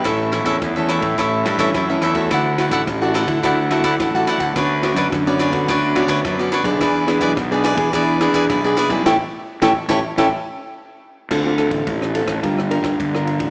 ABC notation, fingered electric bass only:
X:1
M:4/4
L:1/16
Q:1/4=107
K:Amix
V:1 name="Fingered electric bass" clef=bass
A,,,3 E,, E,,3 A,, A,,,2 G,,2 F,,2 E,,2 | D,,3 A,,, A,,,3 D, D,,3 D,, A,,,2 z D,, | D,,3 F,, F,,3 D, D,,3 D,, F,,2 z B,,, | E,,3 B,,, B,,,3 E, E,,3 E,, B,,,2 z B,,, |
A,,, z3 A,,, z A,,, z A,,, z6 z | [K:Dm] D,,3 A,,, A,,,3 A,,, G,,,3 G,,, G,,,3 A,,, |]